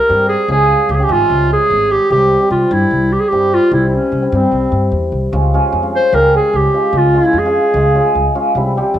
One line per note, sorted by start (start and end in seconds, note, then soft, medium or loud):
0.00 0.27 A#4 medium
0.09 0.34 G2 medium
0.09 0.54 G3 medium
0.09 0.29 C4 medium
0.09 0.29 G4 medium
0.28 0.47 G#4 loud
0.48 0.73 C#2 medium
0.48 1.07 G#3 medium
0.48 0.74 C#4 medium
0.48 0.74 F4 medium
0.48 0.92 G#4 medium
0.89 1.01 C#2 medium
0.89 0.96 G4 medium
0.94 1.05 G#4 medium
0.98 1.04 C#4 medium
0.98 1.05 G4 medium
1.03 1.13 G4 medium
1.08 1.21 G#1 loud
1.08 2.16 G#3 medium
1.08 1.50 C#4 medium
1.08 1.51 F4 medium
1.08 1.50 E5 medium
1.30 1.54 C#2 medium
1.53 1.93 G#4 loud
1.70 1.94 G#1 medium
1.91 2.11 G4 loud
2.10 2.35 C2 medium
2.10 2.39 G3 medium
2.10 2.26 C4 medium
2.10 2.26 E4 medium
2.10 2.49 G4 loud
2.40 3.31 G3 medium
2.40 2.81 C4 medium
2.40 2.81 G4 medium
2.50 2.63 C2 medium
2.50 2.74 F4 medium
2.71 2.83 G2 medium
2.71 3.14 E4 medium
2.91 3.15 C2 medium
3.12 3.21 G4 medium
3.20 3.29 G#4 medium
3.28 3.55 G4 medium
3.32 3.56 G2 medium
3.32 3.71 G3 medium
3.32 3.52 C4 medium
3.32 3.52 E4 medium
3.54 3.73 F4 loud
3.71 3.96 C2 medium
3.71 4.32 G3 medium
3.71 3.98 C4 medium
3.71 3.97 E4 medium
3.71 3.85 E4 medium
3.88 3.96 E4 soft
3.95 4.28 C#4 medium
4.12 4.24 C2 medium
4.22 4.27 C4 medium
4.22 4.28 E4 medium
4.28 4.36 C#4 medium
4.32 4.44 G2 medium
4.32 5.38 G3 medium
4.32 4.94 C4 medium
4.32 4.74 C4 medium
4.32 4.74 E4 medium
4.52 4.64 C2 medium
4.72 4.90 G2 medium
4.92 5.10 E2 medium
5.12 5.30 C2 medium
5.32 5.57 C#2 loud
5.32 5.53 G#3 medium
5.32 5.43 C#4 medium
5.32 5.43 F4 medium
5.54 5.81 G#3 medium
5.54 5.69 C#4 medium
5.54 5.69 F4 medium
5.72 5.97 F2 medium
5.82 6.12 G#3 medium
5.82 5.98 C#4 medium
5.82 5.98 F4 medium
5.95 6.16 C5 medium
6.12 6.37 C#2 medium
6.12 6.32 G#3 medium
6.12 6.24 C#4 medium
6.12 6.24 G4 medium
6.12 6.34 A#4 loud
6.33 6.73 G#3 medium
6.33 6.54 C#4 medium
6.33 6.54 G#4 medium
6.33 6.57 G#4 medium
6.53 6.66 C#2 medium
6.53 6.99 G4 medium
6.74 6.93 G#3 medium
6.74 6.84 C#4 medium
6.74 6.84 F4 medium
6.93 7.17 C#2 medium
6.93 7.13 G#3 medium
6.93 7.04 C#4 medium
6.93 7.05 F4 medium
6.97 7.20 F4 medium
7.14 7.44 G#3 medium
7.14 7.29 C#4 medium
7.14 7.30 F4 medium
7.18 7.40 E4 medium
7.33 7.58 F2 medium
7.38 8.37 G#4 medium
7.45 7.75 G#3 medium
7.45 7.60 C#4 medium
7.45 7.60 F4 medium
7.74 7.98 C#2 medium
7.74 7.94 G#3 medium
7.74 7.86 C#4 medium
7.74 7.85 F4 medium
7.95 8.34 G#3 medium
7.95 8.15 C#4 medium
7.95 8.15 F4 medium
8.15 8.27 C#2 medium
8.35 8.60 G#3 medium
8.35 8.45 C#4 medium
8.35 8.45 F4 medium
8.55 8.79 C2 medium
8.55 8.76 G3 medium
8.55 8.66 C4 medium
8.55 8.66 E4 medium
8.77 8.99 G3 medium
8.77 8.92 C4 medium
8.77 8.92 G4 medium
8.94 8.99 E2 medium